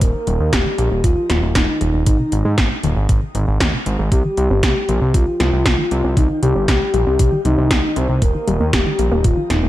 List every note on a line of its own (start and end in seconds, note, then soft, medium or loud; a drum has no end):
0.01 0.13 D#1 loud
0.01 0.08 A#2 loud
0.01 0.54 A#4 loud
0.01 kick loud
0.01 closed hi-hat loud
0.14 0.21 D#3 medium
0.27 0.39 D#1 medium
0.27 0.34 G3 loud
0.27 closed hi-hat medium
0.40 0.51 D#2 medium
0.40 0.51 A#3 medium
0.53 0.64 D#1 loud
0.53 0.64 A#2 medium
0.53 1.03 G4 loud
0.53 kick loud
0.53 snare loud
0.53 closed hi-hat medium
0.66 0.72 D#3 loud
0.78 0.90 A#1 medium
0.78 0.89 G3 medium
0.78 closed hi-hat medium
0.91 1.03 D#1 medium
0.91 1.02 A#3 loud
1.04 1.15 D#1 loud
1.04 1.52 F4 loud
1.04 kick loud
1.04 closed hi-hat medium
1.17 1.29 D#3 medium
1.30 1.41 D#1 loud
1.30 1.41 G3 loud
1.30 snare medium
1.30 closed hi-hat medium
1.43 1.54 D#1 medium
1.43 1.54 A#3 medium
1.55 1.67 D#1 loud
1.55 1.62 A#2 loud
1.55 2.03 D#4 medium
1.55 kick loud
1.55 snare loud
1.55 closed hi-hat medium
1.68 1.75 D#3 medium
1.81 1.92 D#1 medium
1.81 1.88 G3 loud
1.81 closed hi-hat medium
1.94 2.05 D#1 medium
1.94 2.05 A#3 medium
2.06 2.18 G#1 loud
2.06 2.18 A#2 medium
2.06 2.54 D#4 medium
2.06 kick loud
2.06 closed hi-hat medium
2.19 2.26 C3 loud
2.32 2.44 G#1 medium
2.32 2.43 D#3 medium
2.32 closed hi-hat medium
2.45 2.56 G#2 medium
2.45 2.56 G#3 loud
2.58 2.69 G#1 loud
2.58 2.70 A#2 medium
2.58 kick loud
2.58 snare loud
2.58 closed hi-hat medium
2.71 2.83 C3 medium
2.83 2.95 D#1 loud
2.83 2.95 D#3 loud
2.83 closed hi-hat medium
2.96 3.08 G#1 medium
2.96 3.07 G#3 medium
3.09 3.21 G#1 loud
3.09 3.16 A#2 loud
3.09 kick loud
3.09 closed hi-hat medium
3.22 3.29 C3 medium
3.35 3.46 G#1 medium
3.35 3.41 D#3 loud
3.35 closed hi-hat medium
3.48 3.59 G#1 medium
3.48 3.59 G#3 medium
3.60 3.72 D#2 loud
3.60 3.71 A#2 medium
3.60 kick loud
3.60 snare loud
3.60 closed hi-hat medium
3.73 3.80 C3 loud
3.86 3.97 G#1 medium
3.86 3.97 D#3 medium
3.86 closed hi-hat medium
3.99 4.10 G#1 medium
3.99 4.10 G#3 loud
4.12 4.23 C2 loud
4.12 4.23 C3 medium
4.12 5.16 G4 loud
4.12 kick loud
4.12 closed hi-hat medium
4.25 4.31 D#3 loud
4.37 4.49 C2 medium
4.37 4.48 G3 medium
4.37 closed hi-hat medium
4.50 4.62 G1 medium
4.50 4.61 C4 loud
4.63 4.74 C2 medium
4.63 4.75 C3 medium
4.63 kick loud
4.63 snare loud
4.63 closed hi-hat medium
4.76 4.88 D#3 medium
4.89 5.00 A#1 loud
4.89 5.00 C3 medium
4.89 closed hi-hat medium
5.02 5.13 C2 medium
5.02 5.13 C4 medium
5.14 5.26 C2 loud
5.14 5.21 C3 loud
5.14 6.16 F4 loud
5.14 kick loud
5.14 closed hi-hat medium
5.27 5.34 D#3 medium
5.40 5.51 C2 medium
5.40 5.46 G3 loud
5.40 snare medium
5.40 closed hi-hat medium
5.53 5.64 C2 medium
5.53 5.64 C4 medium
5.66 5.77 C3 medium
5.66 kick loud
5.66 snare loud
5.66 closed hi-hat medium
5.78 5.85 D#3 loud
5.91 6.03 C2 loud
5.91 6.02 G3 medium
5.91 closed hi-hat medium
6.04 6.16 C2 medium
6.04 6.15 C4 loud
6.17 6.28 C2 loud
6.17 6.29 C3 medium
6.17 6.41 D#4 loud
6.17 kick loud
6.17 closed hi-hat medium
6.30 6.42 D#3 medium
6.42 6.54 C2 medium
6.42 6.53 C3 medium
6.42 7.41 G4 loud
6.42 closed hi-hat medium
6.55 6.67 G1 medium
6.55 6.66 C4 medium
6.68 6.80 C2 loud
6.68 6.75 C3 medium
6.68 kick loud
6.68 snare loud
6.68 closed hi-hat medium
6.81 6.88 D#3 medium
6.94 7.05 A#1 loud
6.94 7.00 G3 loud
6.94 closed hi-hat medium
7.07 7.18 C2 medium
7.07 7.18 C4 medium
7.19 7.31 C2 loud
7.19 7.30 C3 medium
7.19 kick loud
7.19 closed hi-hat medium
7.32 7.39 D#3 loud
7.45 7.56 C2 medium
7.45 7.56 G3 medium
7.45 7.98 D#4 loud
7.45 closed hi-hat medium
7.58 7.69 C2 medium
7.58 7.69 C4 loud
7.71 7.83 C3 medium
7.71 kick loud
7.71 snare loud
7.71 closed hi-hat medium
7.83 7.96 D#3 medium
7.96 8.08 C2 medium
7.96 8.07 C3 medium
7.96 8.24 C5 loud
7.96 closed hi-hat medium
8.09 8.20 C2 medium
8.09 8.20 C4 medium
8.22 8.33 D#1 loud
8.22 8.29 A#2 loud
8.22 8.75 A#4 loud
8.22 kick loud
8.22 closed hi-hat medium
8.35 8.41 D#3 medium
8.47 8.59 D#1 loud
8.47 8.54 G3 loud
8.47 closed hi-hat medium
8.60 8.72 D#2 medium
8.60 8.71 A#3 medium
8.73 8.85 D#1 medium
8.73 8.84 A#2 medium
8.73 9.26 G4 loud
8.73 kick loud
8.73 snare loud
8.73 closed hi-hat medium
8.86 8.93 D#3 loud
8.99 9.10 A#1 loud
8.99 9.10 G3 medium
8.99 closed hi-hat medium
9.12 9.23 D#1 medium
9.12 9.23 A#3 loud
9.24 9.36 D#1 loud
9.24 9.37 A#2 medium
9.24 9.52 F4 loud
9.24 kick loud
9.24 closed hi-hat medium
9.37 9.49 D#3 medium
9.50 9.61 D#1 loud
9.50 9.61 A#2 medium
9.50 9.69 D#4 loud
9.50 snare medium
9.50 closed hi-hat medium
9.63 9.69 D#1 medium
9.63 9.69 A#3 medium